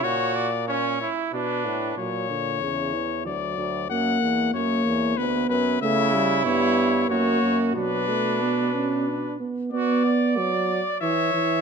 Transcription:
0.03 1.04 A#2 medium
0.03 0.52 F#4 loud
0.03 0.37 C#5 medium
0.36 0.68 D5 medium
0.68 1.00 C#4 loud
0.68 1.09 C#5 medium
1.01 1.33 E4 medium
1.33 1.67 B2 medium
1.33 1.97 D4 medium
1.33 1.94 B4 medium
1.65 1.97 A2 medium
1.97 2.63 A#2 medium
1.97 2.27 F#3 medium
1.97 3.22 C#5 medium
2.29 2.64 D3 medium
2.62 3.27 E2 medium
2.62 2.95 C#3 medium
2.94 3.27 E3 medium
3.26 3.57 D2 medium
3.26 3.90 F#3 medium
3.26 3.89 D5 medium
3.58 3.91 D2 medium
3.90 4.21 F#2 medium
3.90 4.53 A#3 medium
3.90 4.53 F#5 medium
4.22 4.53 E2 medium
4.54 4.85 F#2 medium
4.54 5.17 A#3 medium
4.54 5.19 C#5 medium
4.86 5.17 E2 medium
5.17 5.49 D2 medium
5.17 5.80 B3 medium
5.17 5.49 B4 medium
5.50 5.80 F#2 medium
5.50 5.81 B4 medium
5.81 6.46 C#3 medium
5.81 6.15 A3 medium
5.81 7.06 E4 loud
5.81 6.44 E5 medium
6.13 6.44 G3 medium
6.45 7.09 G2 medium
6.45 7.11 B3 medium
6.45 7.09 C#5 medium
7.09 7.42 F#2 medium
7.09 7.75 A#3 medium
7.09 7.74 F#4 medium
7.09 7.58 C#5 medium
7.42 7.77 F#2 medium
7.75 9.40 B2 medium
7.75 8.10 F#3 medium
7.75 9.37 D4 medium
7.75 9.37 B4 medium
8.09 8.43 A3 medium
8.41 8.74 B3 medium
8.74 9.09 C#4 medium
9.07 9.39 D4 medium
9.40 9.72 B3 medium
9.72 10.39 B3 loud
9.72 10.03 F#4 medium
9.72 10.33 D5 medium
10.05 11.00 D5 medium
10.37 10.85 F#3 medium
10.37 11.00 D5 medium
11.01 11.33 E3 medium
11.01 11.61 C#5 medium
11.01 11.61 E5 medium
11.34 11.61 E3 medium

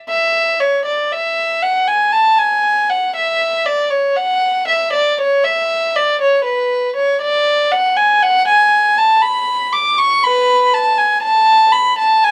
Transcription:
0.09 0.58 E5 medium
0.60 0.85 C#5 medium
0.85 1.09 D5 medium
1.12 1.62 E5 medium
1.62 1.87 F#5 medium
1.87 2.12 G#5 medium
2.13 2.38 A5 medium
2.39 2.89 G#5 medium
2.90 3.15 F#5 medium
3.16 3.66 E5 medium
3.66 3.91 D5 medium
3.90 4.16 C#5 medium
4.17 4.68 F#5 medium
4.68 4.92 E5 medium
4.93 5.18 D5 medium
5.21 5.44 C#5 medium
5.44 5.95 E5 medium
5.96 6.20 D5 medium
6.21 6.45 C#5 medium
6.44 6.94 B4 medium
6.96 7.21 C#5 medium
7.21 7.70 D5 medium
7.71 7.96 F#5 medium
7.97 8.21 G#5 medium
8.22 8.47 F#5 loud
8.48 8.96 G#5 medium
8.98 9.23 A5 medium
9.22 9.72 B5 medium
9.73 9.98 D6 medium
9.98 10.23 C#6 medium
10.24 10.70 B4 medium
10.24 10.73 B5 medium
10.74 10.98 A5 medium
10.98 11.23 G#5 medium
11.22 11.72 A5 loud
11.72 11.98 B5 medium
11.98 12.23 A5 loud
12.24 12.31 G#5 loud

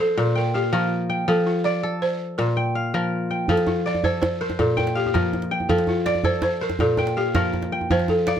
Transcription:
0.00 0.23 F3 medium
0.00 0.17 A4 medium
0.00 0.23 A4 medium
0.00 1.18 C5 medium
0.00 0.55 D5 medium
0.17 1.33 A#2 medium
0.17 0.36 A#4 medium
0.35 0.54 A#4 medium
0.35 1.09 G5 medium
0.54 0.72 G4 medium
0.54 1.54 F5 medium
0.73 1.27 F3 medium
0.73 1.12 F4 medium
0.73 1.89 A#4 medium
1.10 2.03 G5 medium
1.28 2.43 F3 medium
1.28 1.47 A4 medium
1.47 1.65 F4 medium
1.64 1.99 D5 loud
1.64 2.76 D5 medium
1.83 2.44 A4 medium
2.02 2.36 C5 loud
2.38 3.53 A#2 medium
2.38 3.08 A#4 medium
2.57 3.30 G5 medium
2.75 3.75 F5 medium
2.94 3.48 F3 medium
2.94 4.10 A#4 medium
3.31 4.24 G5 medium
3.48 4.64 F3 medium
3.48 3.68 A4 medium
3.48 djembe bass medium
3.57 djembe slap medium
3.67 3.86 F4 medium
3.67 djembe tone medium
3.86 4.96 D5 medium
3.86 4.03 D5 medium
3.95 djembe slap soft
3.95 djembe tone medium
4.04 4.65 A4 medium
4.04 4.20 C5 medium
4.04 djembe bass medium
4.22 4.41 C5 medium
4.22 djembe slap medium
4.22 djembe tone medium
4.41 4.60 A#4 medium
4.41 5.60 C5 medium
4.50 djembe slap medium
4.50 djembe tone medium
4.59 5.74 A#2 medium
4.59 4.76 A4 medium
4.59 djembe bass medium
4.77 4.94 A#4 medium
4.77 5.51 G5 medium
4.77 djembe slap soft
4.77 djembe tone medium
4.87 djembe slap medium
4.95 5.05 G4 medium
4.95 5.95 F5 medium
5.06 5.14 G4 medium
5.06 djembe tone soft
5.14 5.68 F3 medium
5.14 5.53 F4 medium
5.14 6.30 A#4 medium
5.14 djembe slap medium
5.14 djembe bass medium
5.33 djembe slap soft
5.33 djembe tone medium
5.42 djembe slap medium
5.51 6.44 G5 medium
5.60 djembe tone medium
5.69 6.85 F3 medium
5.69 5.86 A4 medium
5.69 djembe bass medium
5.78 djembe slap medium
5.87 6.05 F4 medium
5.87 djembe tone medium
6.06 6.25 D5 medium
6.06 7.17 D5 medium
6.06 djembe slap medium
6.15 djembe slap soft
6.15 djembe tone medium
6.24 6.86 A4 medium
6.24 6.42 C5 medium
6.24 djembe bass medium
6.42 6.62 C5 loud
6.42 djembe slap medium
6.42 djembe tone medium
6.61 6.81 A#4 medium
6.61 7.80 C5 medium
6.70 djembe slap medium
6.70 djembe tone medium
6.79 7.95 A#2 medium
6.79 6.97 A4 medium
6.79 djembe bass medium
6.97 7.15 A#4 medium
6.97 7.72 G5 medium
6.97 djembe slap soft
6.97 djembe tone medium
7.07 djembe slap medium
7.17 7.34 G4 medium
7.17 8.17 F5 medium
7.35 7.89 F3 medium
7.35 7.74 F4 loud
7.35 8.40 A#4 medium
7.35 djembe slap medium
7.35 djembe bass medium
7.44 djembe slap soft
7.53 djembe slap soft
7.53 djembe tone medium
7.62 djembe slap medium
7.72 8.40 G5 medium
7.81 djembe tone medium
7.90 8.40 F3 medium
7.90 8.08 C5 loud
7.90 djembe bass medium
7.99 djembe slap medium
8.08 8.26 A4 medium
8.08 djembe tone medium
8.27 8.40 D5 medium
8.27 8.40 F5 loud
8.27 djembe slap medium
8.37 djembe slap soft
8.37 djembe tone medium

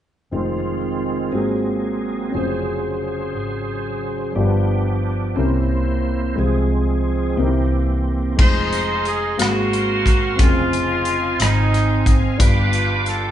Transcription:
0.31 1.34 F1 medium
0.31 1.33 D#3 soft
0.31 1.33 G#3 soft
0.31 1.31 C4 soft
0.31 2.32 C4 soft
0.31 1.33 D#4 soft
0.31 1.33 F4 soft
0.31 1.32 F4 soft
0.31 1.34 G#4 soft
0.31 1.35 C5 soft
1.32 2.30 G#1 medium
1.32 2.31 G#2 soft
1.32 4.32 F#3 soft
1.32 2.33 A#3 soft
1.32 2.28 C4 soft
1.32 2.33 F4 soft
1.32 2.35 F#4 soft
1.32 2.33 G#4 soft
1.32 2.34 G#4 soft
1.36 2.36 A#4 medium
2.30 4.34 C#3 soft
2.30 4.30 C4 soft
2.30 4.31 C#4 soft
2.34 3.35 F1 medium
2.34 4.32 F4 soft
2.34 4.34 G#4 soft
2.34 4.33 G#4 soft
2.34 4.34 C5 soft
2.34 4.34 C5 medium
3.35 4.32 G#1 medium
4.35 5.33 G1 medium
4.35 5.33 G2 soft
4.35 5.36 F3 soft
4.35 5.36 B3 soft
4.35 5.35 D4 soft
4.35 5.37 D4 soft
4.35 5.37 F4 soft
4.35 5.36 G4 medium
4.35 5.36 G4 soft
4.35 4.44 A#4 soft
4.45 5.41 B4 medium
5.36 6.34 C2 medium
5.36 6.36 C3 soft
5.36 6.34 C3 soft
5.36 6.36 A#3 soft
5.36 6.35 C4 medium
5.36 6.37 C#4 soft
5.36 6.36 E4 soft
5.36 6.38 E4 soft
5.36 6.38 G4 soft
5.36 6.38 A#4 medium
5.36 6.36 C5 soft
6.35 7.34 C2 medium
6.35 7.34 C3 soft
6.35 7.38 F3 medium
6.35 7.37 G#3 soft
6.35 7.36 C4 soft
6.35 8.37 C4 soft
6.35 7.38 F4 soft
6.35 7.38 G#4 soft
6.35 7.38 G#4 medium
6.39 7.38 G#3 soft
6.39 7.39 C5 soft
7.36 8.35 C2 medium
7.36 8.35 C3 medium
7.36 8.37 E3 soft
7.36 8.38 A#3 medium
7.36 8.37 A#3 soft
7.36 8.36 C4 soft
7.36 7.45 D#4 soft
7.36 8.37 G4 soft
7.36 8.39 G4 soft
7.36 8.40 A#4 medium
7.45 8.42 E4 soft
8.37 9.39 F1 medium
8.37 9.38 G#3 soft
8.37 9.36 C4 soft
8.37 9.39 D#4 soft
8.37 9.40 F4 soft
8.37 9.39 G#4 medium
8.37 9.39 G#4 soft
8.37 9.05 G#4 medium
8.37 9.02 C5 medium
8.37 9.39 D#5 soft
8.37 9.38 F5 soft
8.37 10.38 C6 medium
8.37 kick medium
8.37 crash medium
8.41 9.36 D#4 medium
8.73 closed hi-hat soft
9.05 9.37 G#4 medium
9.05 closed hi-hat soft
9.37 10.36 G#1 medium
9.37 10.35 G#2 soft
9.37 10.39 A#3 soft
9.37 10.36 A#3 medium
9.37 10.34 C4 soft
9.37 10.36 C4 medium
9.37 10.39 F#4 soft
9.37 10.40 F#4 soft
9.37 10.40 F#4 medium
9.37 10.39 G#4 medium
9.37 10.39 A#4 soft
9.37 10.39 F5 soft
9.37 10.38 F5 soft
9.37 closed hi-hat medium
9.42 cross-stick medium
9.73 closed hi-hat soft
10.06 kick medium
10.06 closed hi-hat soft
10.36 11.36 F1 medium
10.36 12.35 C#3 soft
10.36 12.34 C4 soft
10.36 12.38 C4 medium
10.36 12.36 F4 soft
10.36 13.31 F5 medium
10.36 12.38 G#5 soft
10.36 kick medium
10.36 closed hi-hat medium
10.40 11.37 G#3 medium
10.40 11.37 C4 medium
10.40 11.41 F4 medium
10.40 12.37 G#4 soft
10.40 10.48 A#4 soft
10.49 12.41 C5 soft
10.73 closed hi-hat soft
11.05 closed hi-hat soft
11.40 12.36 G#1 medium
11.40 12.37 G#3 medium
11.40 12.37 C4 medium
11.40 12.16 D#4 medium
11.40 cross-stick medium
11.40 closed hi-hat medium
11.74 cross-stick soft
11.74 closed hi-hat soft
12.06 kick medium
12.06 closed hi-hat soft
12.37 13.31 G1 medium
12.37 13.31 G2 medium
12.37 13.31 B3 medium
12.37 13.31 D4 soft
12.37 13.31 F4 soft
12.37 13.31 G4 soft
12.37 13.31 B4 medium
12.37 13.04 B4 medium
12.37 13.31 G5 soft
12.37 13.31 D6 medium
12.37 kick medium
12.37 closed hi-hat medium
12.41 13.31 D4 medium
12.41 13.31 F4 medium
12.73 closed hi-hat soft
13.06 13.31 A4 medium
13.06 cross-stick soft
13.06 closed hi-hat soft

